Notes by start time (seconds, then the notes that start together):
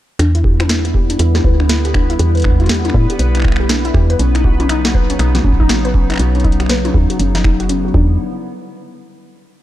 0.19 E2 D3 G3 B3 D4 E4 B4, finger snap, closed hi-hat
0.35 E4, closed hi-hat
0.44 G4, kick
0.60 B4, finger snap, closed hi-hat, high tom
0.69 D4, snare, closed hi-hat
0.85 E4, closed hi-hat
0.94 G4, kick
1.10 D4, closed hi-hat
1.19 E2 E4, closed hi-hat
1.35 G4, snare, high tom
1.44 D2 B4, kick
1.60 D4, finger snap
1.69 E4, snare, closed hi-hat
1.85 G4, closed hi-hat
1.94 D4, finger snap, kick
2.10 E4, closed hi-hat
2.19 E2 G4, closed hi-hat
2.35 B4, closed hi-hat
2.37 closed hi-hat
2.40 closed hi-hat
2.42 D4, finger snap, kick, closed hi-hat
2.48 kick
2.52 kick
2.56 E4, kick
2.60 kick, closed hi-hat, high tom
2.62 kick, high tom
2.64 kick, high tom
2.66 kick, closed hi-hat, high tom
2.67 G4, snare, closed hi-hat, high tom
2.75 closed hi-hat
2.85 D4, closed hi-hat, high tom
2.90 finger snap
2.94 A2 E4, kick
3.10 G4, closed hi-hat
3.19 B1 B4, closed hi-hat
3.35 D4, finger snap, closed hi-hat
3.37 finger snap
3.40 finger snap
3.42 E4, finger snap, kick
3.44 finger snap
3.48 finger snap
3.52 finger snap
3.56 G4, finger snap
3.69 D4, snare, closed hi-hat
3.85 E4, closed hi-hat
3.94 E2 G4, finger snap, kick
4.10 B4, closed hi-hat
4.19 B1 C#3 F#3 B3 C#4 D#4, closed hi-hat
4.35 D#4, finger snap, closed hi-hat
4.44 F#4, kick
4.60 C#4, closed hi-hat, high tom
4.69 D#4, finger snap, closed hi-hat
4.85 F#4, snare, closed hi-hat
4.94 B4, kick
5.10 C#4, closed hi-hat
5.19 B1 D#4, finger snap, closed hi-hat
5.35 F#4, snare, closed hi-hat, high tom
5.44 A1 C#4, kick
5.53 kick
5.60 D#4, kick
5.69 F#4, finger snap, snare, closed hi-hat
5.85 B4, closed hi-hat
5.94 C#4, kick
6.10 D#4, finger snap, closed hi-hat
6.12 finger snap
6.14 finger snap
6.16 finger snap
6.17 B1 F#4, finger snap, closed hi-hat
6.35 C#4, closed hi-hat
6.40 closed hi-hat
6.44 D#4, kick, closed hi-hat
6.52 closed hi-hat
6.60 F#4, finger snap, closed hi-hat
6.66 B4, finger snap, snare, closed hi-hat
6.75 finger snap
6.85 C#4, closed hi-hat, high tom
6.94 D#2 D#4, kick
7.10 F#4, closed hi-hat
7.19 F#1 C#4, closed hi-hat
7.35 D#4, snare, closed hi-hat
7.44 D#4, finger snap, kick
7.60 F#4, closed hi-hat
7.69 C#4, closed hi-hat
7.85 F#4
7.94 E2 D4, kick